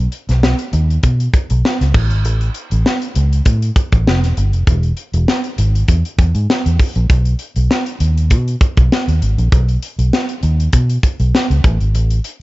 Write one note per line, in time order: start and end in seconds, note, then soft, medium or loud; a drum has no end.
0.12 closed hi-hat medium
0.29 0.53 B1 loud
0.29 snare soft
0.29 closed hi-hat medium
0.43 snare loud
0.59 closed hi-hat medium
0.73 0.97 D#2 loud
0.73 closed hi-hat medium
0.90 closed hi-hat soft
1.03 1.27 B2 medium
1.03 kick medium
1.03 closed hi-hat medium
1.20 closed hi-hat medium
1.34 kick loud
1.34 closed hi-hat medium
1.50 1.61 B1 loud
1.50 closed hi-hat medium
1.65 snare loud
1.81 1.92 C#2 medium
1.81 snare soft
1.81 closed hi-hat medium
1.94 2.11 A1 loud
1.94 kick medium
1.94 crash medium
2.11 2.25 G#1 medium
2.11 closed hi-hat soft
2.25 2.49 A1 loud
2.25 closed hi-hat medium
2.41 closed hi-hat soft
2.54 closed hi-hat medium
2.71 2.83 A1 loud
2.71 closed hi-hat medium
2.86 snare loud
3.02 closed hi-hat medium
3.15 3.40 C#2 medium
3.15 closed hi-hat medium
3.33 closed hi-hat medium
3.45 3.69 A2 medium
3.45 kick medium
3.45 closed hi-hat medium
3.62 closed hi-hat medium
3.76 kick medium
3.76 closed hi-hat medium
3.92 4.03 A1 medium
3.92 kick medium
3.92 closed hi-hat medium
4.07 4.23 F1 loud
4.07 snare loud
4.23 4.34 E1 medium
4.23 snare soft
4.23 closed hi-hat medium
4.37 4.53 G1 medium
4.37 closed hi-hat medium
4.53 4.64 F1 medium
4.53 closed hi-hat soft
4.67 4.91 E1 loud
4.67 kick loud
4.67 closed hi-hat medium
4.83 closed hi-hat soft
4.97 closed hi-hat medium
5.13 5.25 E1 medium
5.13 closed hi-hat medium
5.28 snare loud
5.44 closed hi-hat soft
5.58 5.82 G#1 loud
5.58 closed hi-hat medium
5.75 closed hi-hat soft
5.88 6.01 E2 medium
5.88 kick medium
5.88 closed hi-hat medium
6.05 closed hi-hat medium
6.18 6.31 E2 medium
6.18 kick loud
6.18 closed hi-hat medium
6.35 6.46 G#2 medium
6.35 closed hi-hat medium
6.50 snare loud
6.66 6.77 E2 medium
6.66 closed hi-hat medium
6.80 kick medium
6.80 open hi-hat medium
6.95 7.07 A#1 medium
6.95 closed hi-hat soft
7.10 7.33 B1 medium
7.10 kick loud
7.10 closed hi-hat medium
7.25 closed hi-hat soft
7.39 closed hi-hat medium
7.56 7.67 B1 medium
7.56 closed hi-hat medium
7.71 snare loud
7.86 closed hi-hat medium
8.00 8.32 D#2 medium
8.00 closed hi-hat medium
8.18 closed hi-hat soft
8.30 8.54 B2 loud
8.30 kick medium
8.30 closed hi-hat medium
8.48 closed hi-hat medium
8.61 kick medium
8.61 closed hi-hat medium
8.77 8.88 B1 medium
8.77 kick medium
8.77 closed hi-hat medium
8.92 snare loud
9.08 9.19 D#2 medium
9.08 closed hi-hat medium
9.22 9.35 G#1 medium
9.22 closed hi-hat medium
9.38 9.49 A#1 loud
9.38 closed hi-hat soft
9.52 9.76 B1 medium
9.52 kick loud
9.52 closed hi-hat medium
9.68 closed hi-hat soft
9.83 closed hi-hat medium
9.99 10.10 B1 medium
9.99 closed hi-hat medium
10.13 snare loud
10.29 closed hi-hat medium
10.43 10.67 D#2 loud
10.43 closed hi-hat medium
10.60 closed hi-hat medium
10.73 10.97 B2 loud
10.73 kick medium
10.73 closed hi-hat medium
10.90 closed hi-hat medium
11.03 kick medium
11.03 closed hi-hat medium
11.20 11.31 B1 medium
11.20 closed hi-hat soft
11.35 snare loud
11.50 11.61 C#2 loud
11.50 closed hi-hat medium
11.64 11.77 A1 medium
11.64 kick loud
11.64 closed hi-hat medium
11.80 11.95 G#1 medium
11.80 closed hi-hat soft
11.95 12.18 A1 medium
11.95 closed hi-hat medium
12.10 closed hi-hat soft
12.24 closed hi-hat medium